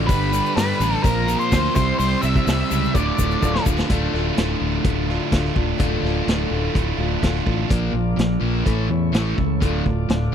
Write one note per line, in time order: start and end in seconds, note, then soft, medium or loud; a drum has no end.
0.00 0.11 A1 medium
0.07 0.39 G1 medium
0.07 0.30 G2 loud
0.07 0.32 G2 medium
0.07 0.32 D3 medium
0.07 0.31 D3 loud
0.07 0.32 G3 medium
0.07 0.32 G3 loud
0.07 1.03 B3 medium
0.07 0.32 B3 loud
0.07 1.03 D4 medium
0.07 0.31 D4 medium
0.07 1.03 G4 medium
0.07 0.30 G4 medium
0.07 0.47 G4 medium
0.07 0.52 B4 medium
0.07 0.47 B4 medium
0.07 1.03 D5 medium
0.07 0.47 D5 medium
0.07 kick loud
0.07 open hi-hat medium
0.07 shaker medium
0.21 snare soft
0.31 0.55 G2 medium
0.31 0.55 D3 medium
0.31 0.56 G3 medium
0.31 0.55 G3 soft
0.31 0.56 B3 soft
0.31 0.56 D4 soft
0.31 0.56 G4 medium
0.31 open hi-hat medium
0.31 shaker medium
0.46 shaker soft
0.56 0.79 G2 medium
0.56 0.72 G2 medium
0.56 0.80 D3 medium
0.56 1.03 G3 medium
0.56 0.80 G3 medium
0.56 1.04 B3 medium
0.56 1.04 D4 medium
0.56 0.94 G4 medium
0.56 1.04 G4 medium
0.56 0.94 B4 medium
0.56 1.03 B4 medium
0.56 0.94 D5 medium
0.56 snare loud
0.56 open hi-hat medium
0.56 shaker medium
0.80 0.95 A1 medium
0.80 1.03 G2 medium
0.80 1.03 D3 medium
0.80 1.03 G3 medium
0.80 open hi-hat medium
0.80 shaker medium
1.03 1.35 A#1 medium
1.03 1.51 A#2 medium
1.03 1.26 A#2 medium
1.03 1.51 F3 medium
1.03 1.27 F3 medium
1.03 1.74 A#3 medium
1.03 1.51 A#3 medium
1.03 1.27 A#3 medium
1.03 1.73 C4 medium
1.03 1.52 C4 medium
1.03 1.74 F4 medium
1.03 1.42 F4 medium
1.03 1.52 F4 medium
1.03 1.39 A#4 medium
1.03 1.42 A#4 medium
1.03 1.73 C5 medium
1.03 1.42 C5 medium
1.03 kick loud
1.03 open hi-hat medium
1.03 shaker medium
1.27 1.50 A#2 medium
1.27 1.50 F3 medium
1.27 1.51 A#3 medium
1.27 snare soft
1.27 open hi-hat medium
1.27 shaker medium
1.39 1.74 C5 medium
1.39 shaker soft
1.51 1.67 D2 medium
1.51 1.74 A#2 medium
1.51 1.74 F3 medium
1.51 1.76 F3 medium
1.51 1.74 A#3 loud
1.51 1.76 A#3 medium
1.51 1.75 C4 medium
1.51 1.75 F4 medium
1.51 1.76 F4 medium
1.51 1.75 A#4 medium
1.51 1.74 C5 medium
1.51 kick medium
1.51 snare loud
1.51 open hi-hat medium
1.51 shaker medium
1.65 snare soft
1.74 1.91 C2 medium
1.74 1.98 C3 loud
1.74 2.48 C3 medium
1.74 2.47 E3 medium
1.74 2.93 G3 medium
1.74 1.98 G3 loud
1.74 2.47 G3 medium
1.74 2.92 C4 medium
1.74 2.47 C4 medium
1.74 1.99 C4 loud
1.74 2.32 E4 medium
1.74 2.93 E4 medium
1.74 2.47 E4 medium
1.74 2.32 G4 medium
1.74 2.92 C5 medium
1.74 2.32 C5 medium
1.74 1.97 C5 medium
1.74 kick loud
1.74 open hi-hat medium
1.74 shaker medium
1.99 2.14 C2 medium
1.99 2.22 C3 loud
1.99 2.23 G3 medium
1.99 2.24 C4 medium
1.99 2.23 C5 loud
1.99 open hi-hat medium
1.99 shaker medium
2.21 2.38 C2 medium
2.21 2.45 C3 medium
2.21 2.46 G3 medium
2.21 2.47 C4 medium
2.21 2.44 E5 loud
2.21 open hi-hat medium
2.21 shaker medium
2.36 kick medium
2.36 shaker soft
2.46 2.62 C2 medium
2.46 2.69 C3 medium
2.46 2.95 E3 medium
2.46 2.69 G3 medium
2.46 2.95 G3 medium
2.46 2.70 C4 medium
2.46 2.96 C4 medium
2.46 2.85 E4 medium
2.46 2.85 G4 medium
2.46 2.85 C5 medium
2.46 2.95 E5 medium
2.46 snare loud
2.46 open hi-hat medium
2.46 shaker medium
2.50 2.96 E4 medium
2.70 2.86 C#2 medium
2.70 2.93 C3 medium
2.70 2.93 G3 medium
2.70 2.93 C4 medium
2.70 open hi-hat medium
2.70 shaker loud
2.84 shaker soft
2.94 3.10 D1 loud
2.94 3.16 D2 medium
2.94 3.17 A2 medium
2.94 3.41 D3 medium
2.94 3.17 D3 medium
2.94 3.88 A3 medium
2.94 3.42 A3 medium
2.94 3.88 D4 medium
2.94 3.42 D4 medium
2.94 3.88 F4 medium
2.94 3.32 F4 medium
2.94 3.43 F4 medium
2.94 3.32 A4 medium
2.94 3.88 D5 medium
2.94 3.32 D5 medium
2.94 3.62 D5 medium
2.94 kick loud
2.94 shaker medium
3.17 3.34 D1 medium
3.17 3.40 D2 medium
3.17 3.41 A2 medium
3.17 3.41 D3 medium
3.17 kick medium
3.17 shaker loud
3.31 shaker soft
3.41 3.57 D1 medium
3.41 3.64 D2 medium
3.41 3.64 A2 medium
3.41 3.66 D3 medium
3.41 3.65 D3 medium
3.41 3.66 A3 medium
3.41 3.65 D4 medium
3.41 3.80 F4 medium
3.41 3.63 F4 medium
3.41 3.80 A4 medium
3.41 3.80 D5 medium
3.41 kick medium
3.41 shaker medium
3.55 snare medium
3.65 3.81 D1 medium
3.65 3.87 D2 medium
3.65 3.88 A2 medium
3.65 3.88 D3 medium
3.65 3.88 A3 soft
3.65 3.89 D4 medium
3.65 3.89 F4 medium
3.65 kick loud
3.65 shaker loud
3.78 snare medium
3.78 shaker soft
3.89 4.06 D1 medium
3.89 4.35 D2 medium
3.89 4.35 A2 medium
3.89 4.13 D3 medium
3.89 4.14 D3 medium
3.89 4.13 A3 medium
3.89 4.13 D4 medium
3.89 4.12 F4 loud
3.89 4.11 F4 medium
3.89 kick loud
3.89 closed hi-hat medium
4.12 4.30 D1 medium
4.12 4.36 D3 medium
4.12 4.37 A3 medium
4.12 4.35 A3 medium
4.12 4.36 D4 medium
4.12 4.37 F4 medium
4.12 snare soft
4.35 4.54 D1 medium
4.35 5.09 D2 medium
4.35 4.82 A2 medium
4.35 5.08 D3 medium
4.35 4.62 D3 medium
4.35 5.08 A3 medium
4.35 4.61 A3 medium
4.35 5.09 D4 medium
4.35 4.60 F4 medium
4.35 5.07 F4 medium
4.35 snare loud
4.35 closed hi-hat medium
4.60 4.78 D1 medium
4.60 4.84 D3 medium
4.60 4.85 A3 medium
4.60 4.86 F4 medium
4.84 5.18 D1 medium
4.84 5.08 A2 medium
4.84 5.07 D3 medium
4.84 5.07 A3 medium
4.84 5.06 F4 medium
4.84 kick loud
4.84 closed hi-hat medium
5.07 5.57 D2 medium
5.07 5.29 A2 medium
5.07 5.30 D3 medium
5.07 5.31 A3 medium
5.07 5.30 A3 soft
5.07 5.30 D4 medium
5.07 5.33 F4 medium
5.07 5.31 F4 medium
5.07 snare soft
5.31 5.49 D1 medium
5.31 5.78 A2 medium
5.31 5.55 D3 medium
5.31 5.56 D3 medium
5.31 5.55 A3 medium
5.31 5.54 D4 medium
5.31 5.53 F4 medium
5.31 5.55 F4 medium
5.31 kick medium
5.31 snare medium
5.31 closed hi-hat medium
5.45 snare soft
5.55 5.73 D1 medium
5.55 5.79 D3 medium
5.55 5.77 A3 soft
5.55 5.79 A3 medium
5.55 5.78 D4 medium
5.55 5.78 F4 medium
5.55 5.80 F4 medium
5.55 kick medium
5.77 5.97 D1 medium
5.77 6.25 D2 medium
5.77 6.26 A2 medium
5.77 6.02 D3 medium
5.77 6.03 D3 medium
5.77 6.03 A3 medium
5.77 6.01 A3 medium
5.77 6.03 D4 medium
5.77 6.01 F4 loud
5.77 6.00 F4 medium
5.77 kick loud
5.77 closed hi-hat medium
6.02 6.20 D1 medium
6.02 6.26 D3 medium
6.02 6.27 A3 medium
6.02 6.26 A3 soft
6.02 6.27 D4 medium
6.02 6.28 F4 medium
6.02 6.27 F4 medium
6.02 snare soft
6.26 6.44 D1 medium
6.26 6.74 D2 medium
6.26 6.73 A2 medium
6.26 6.99 D3 medium
6.26 6.52 D3 medium
6.26 6.99 A3 medium
6.26 6.50 A3 medium
6.26 6.99 D4 medium
6.26 6.49 F4 medium
6.26 6.97 F4 medium
6.26 snare loud
6.26 closed hi-hat medium
6.50 6.68 D1 medium
6.50 6.74 D3 medium
6.50 6.75 A3 medium
6.50 6.75 F4 medium
6.74 6.92 D1 medium
6.74 6.98 A2 medium
6.74 6.98 D3 medium
6.74 6.97 A3 medium
6.74 6.96 F4 medium
6.74 kick loud
6.74 closed hi-hat medium
6.97 7.15 D1 medium
6.97 7.47 D2 medium
6.97 7.20 A2 medium
6.97 7.21 D3 medium
6.97 7.22 A3 medium
6.97 7.23 D4 soft
6.97 7.23 F4 medium
7.22 7.39 D1 medium
7.22 7.68 A2 medium
7.22 7.46 D3 medium
7.22 7.47 D3 medium
7.22 7.45 A3 medium
7.22 7.47 A3 medium
7.22 7.46 D4 medium
7.22 7.44 F4 medium
7.22 7.45 F4 medium
7.22 kick medium
7.22 snare medium
7.22 closed hi-hat medium
7.35 snare soft
7.45 7.63 A1 medium
7.45 7.69 D3 medium
7.45 7.69 A3 medium
7.45 7.70 D4 medium
7.45 7.68 F4 medium
7.45 7.70 F4 medium
7.45 kick medium
7.49 7.70 A3 soft
7.69 7.92 A#1 medium
7.69 7.94 A#2 medium
7.69 7.91 A#2 medium
7.69 7.94 D3 medium
7.69 7.92 F3 medium
7.69 8.65 A#3 medium
7.69 7.94 A#3 medium
7.69 7.93 A#3 medium
7.69 8.65 D4 medium
7.69 7.94 D4 medium
7.69 8.65 F4 medium
7.69 7.93 F4 medium
7.69 8.65 D5 medium
7.69 kick loud
7.69 closed hi-hat medium
7.92 8.15 A#1 medium
7.92 8.15 A#2 medium
7.92 8.15 F3 medium
7.92 8.18 A#3 soft
7.92 8.18 D4 soft
7.92 8.18 F4 medium
8.17 8.39 A#1 medium
8.17 8.39 A#2 medium
8.17 8.66 D3 medium
8.17 8.39 F3 medium
8.17 8.66 A#3 medium
8.17 8.67 D4 medium
8.17 8.67 F4 medium
8.17 snare loud
8.17 closed hi-hat medium
8.41 8.63 A#1 medium
8.41 8.64 A#2 medium
8.41 8.64 F3 medium
8.41 8.65 A#3 loud
8.65 8.88 A1 medium
8.65 8.87 A2 medium
8.65 8.90 A2 medium
8.65 8.87 E3 medium
8.65 8.90 E3 medium
8.65 8.89 A3 medium
8.65 9.60 A3 medium
8.65 8.90 A3 medium
8.65 9.61 C#4 medium
8.65 8.90 C#4 medium
8.65 9.61 E4 medium
8.65 8.88 E4 medium
8.65 9.61 C#5 medium
8.65 kick medium
8.65 closed hi-hat medium
8.89 9.11 E2 medium
8.89 9.11 A2 medium
8.89 9.11 E3 medium
8.89 9.38 C#4 medium
8.89 9.38 E4 medium
8.93 9.39 A3 soft
9.13 9.35 A1 medium
9.13 9.35 A2 medium
9.13 9.36 E3 medium
9.13 9.36 A3 medium
9.13 snare loud
9.13 closed hi-hat medium
9.37 9.59 C#2 medium
9.37 9.59 A2 medium
9.37 9.59 E3 medium
9.37 9.63 C#4 soft
9.37 9.62 E4 medium
9.37 kick medium
9.41 9.63 A3 soft
9.60 9.83 D1 medium
9.60 9.84 D2 medium
9.60 9.84 A2 medium
9.60 9.84 D3 medium
9.60 9.87 D3 medium
9.60 10.35 A3 medium
9.60 9.87 A3 medium
9.60 10.35 D4 medium
9.60 10.35 F4 medium
9.60 10.35 D5 medium
9.60 kick loud
9.60 closed hi-hat medium
9.65 9.87 D4 medium
9.65 9.86 F4 medium
9.85 10.07 D1 medium
9.85 10.07 D2 medium
9.85 10.07 A2 medium
9.85 10.10 D4 soft
9.85 10.10 F4 medium
9.85 kick medium
9.89 10.10 A3 soft
10.09 10.31 D1 medium
10.09 10.31 D2 medium
10.09 10.31 A2 medium
10.09 10.35 D3 medium
10.09 10.35 A3 medium
10.09 10.35 D4 medium
10.09 10.35 F4 medium
10.09 snare loud
10.09 closed hi-hat medium